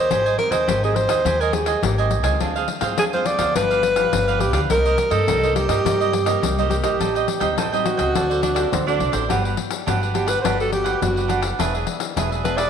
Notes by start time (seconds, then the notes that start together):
Already playing: C5
0.10 G#1 G#3 C4 D#4 G4 C5 D#5 G#5, pandeiro
0.26 C5 D#5 G#5, pandeiro
0.38 C4 D#4 G4 A#4, muted cavaquinho stroke, pandeiro
0.51 D#2 C5 D#5 G#5, pandeiro
0.68 G#1 D#3 G4 C5 D#5 G#5, pandeiro
0.83 C4 D#4 G4 G#4 C5 D#5 G#5, pandeiro
0.96 C5, pandeiro
1.08 D#2 C5 D#5 G#5, pandeiro
1.25 D#2 G#3 G4 C5 D#5 G#5, pandeiro
1.41 A#4 C5 D#5 G#5, pandeiro
1.52 C4 D#4 G4 G#4, muted cavaquinho stroke, pandeiro
1.66 C5 D#5 G#5, pandeiro
1.82 G#1 D#3 C4 D#4 G4, pandeiro
1.98 C5 D#5 G#5, pandeiro
2.11 pandeiro
2.23 C#2 G#3 C4 F4 C5 D#5 G#5, pandeiro
2.40 D2 D3 D4 G#4 C5 F5, pandeiro
2.56 G#4 C5 F5, pandeiro
2.68 muted cavaquinho stroke, pandeiro
2.81 G#2 G#3 C4 F4 G#4 C5 F5, pandeiro
2.98 D2 D3 D4 G#4 C5 F5, pandeiro
3.13 G#3 C4 F4 G#4 C5 F5, pandeiro
3.25 D5, pandeiro
3.38 D2 F3 B3 D4 G#4 C5 F5, pandeiro
3.55 G1 G2 D4 G4 B4 F5, pandeiro
3.70 G4 B4 F5, pandeiro
3.83 muted cavaquinho stroke, pandeiro
3.96 F3 B3 D4 G4 B4 F5, pandeiro
4.13 G1 D3, pandeiro
4.28 F3 B3 D4 G4 B4 F5, pandeiro
4.40 G4, pandeiro
4.53 D2 G4 B4 F5, pandeiro
4.70 C2 C3 G3 A#3 D#4 A#4 C5 D#5, pandeiro
4.85 A#4 C5 D#5, pandeiro
4.98 muted cavaquinho stroke, pandeiro
5.10 G2 G3 A#3 D#4 A4 A#4 C5 D#5, pandeiro
5.28 C2 G2 D#4 A#4 C5 D#5, pandeiro
5.43 G3 A#3 D#4 A#4 C5 D#5, pandeiro
5.56 G4, pandeiro
5.68 G2 G3 A#3 D#4 A#4 C5 D#5, pandeiro
5.85 G2 C3 G3 A#3 D#4 A#4 C5 D#5, pandeiro
6.00 A#4 C5 D#5, pandeiro
6.13 muted cavaquinho stroke, pandeiro
6.26 G3 A#3 D#4 A#4 C5 D#5, pandeiro
6.42 C2 G2, pandeiro
6.58 G3 A#3 D#4 A#4 C5 D#5, pandeiro
6.70 G4, pandeiro
6.83 A#1 G4 A#4 C5 D#5, pandeiro
7.00 A1 A2 G3 C4 D#4 A4 C5 D#5 G5, pandeiro
7.15 C5 D#5 G5, pandeiro
7.28 muted cavaquinho stroke, pandeiro
7.40 D#2 G3 C4 D#4 C5 D#5 G5, pandeiro
7.57 A1 A2 A4 C5 D#5 G5, pandeiro
7.72 G3 C4 D#4 C5 D#5 G5, pandeiro
7.85 F#4, pandeiro
7.97 C#2 A3 C4 F#4 C5 D#5 G5, pandeiro
8.14 D2 D3 F#4 A4 C5 D5, pandeiro
8.30 A4 C5 D5, pandeiro
8.42 D4, muted cavaquinho stroke, pandeiro
8.54 A3 C4 F#4 A4 C5 D5, pandeiro
8.72 D2 A2 C4, pandeiro
8.87 A3 C4 D4 F#4 A4 C5 D5, pandeiro
9.00 C2, pandeiro
9.12 A1 A4 C5 D5, pandeiro
9.29 G1 G3 B3 D4 F#4 G4 A4 B4 F#5, pandeiro
9.44 G4 B4 F#5, pandeiro
9.57 muted cavaquinho stroke, pandeiro
9.71 pandeiro
9.86 G1 D3 B3 D4 F#4 G4 A4 B4 F#5, pandeiro
10.01 G4 B4 F#5, pandeiro
10.14 B3 D4 F#4 G4 A4 B4 F#5, pandeiro
10.27 G4 B4 F#5, pandeiro
10.41 G1 G3 B3 D4 F#4 G4 A4 B4 C5, pandeiro
10.46 F#5
10.58 B3 F#4 G4 A4 B4 F#5, pandeiro
10.72 G4, muted cavaquinho stroke, pandeiro
10.84 G4 B4 F#5, pandeiro
11.01 F#1 D3 B3 F#4 A4, pandeiro
11.16 G4 B4 F#5, pandeiro
11.28 D4 G4 B4 F#5, pandeiro
11.42 G4 B4 F#5, pandeiro
11.59 E1 E3 B3 D4 G#4 B4 E5, pandeiro
11.74 G#4 B4 E5, pandeiro
11.87 muted cavaquinho stroke, pandeiro
12.00 pandeiro
12.16 E1 B2 B3 D4 G#4 B4 E5, pandeiro
12.32 G#4 B4 E5, pandeiro
12.44 B3 D4 G#4 B4 E5, pandeiro
12.57 G#4 B4 D5 E5, pandeiro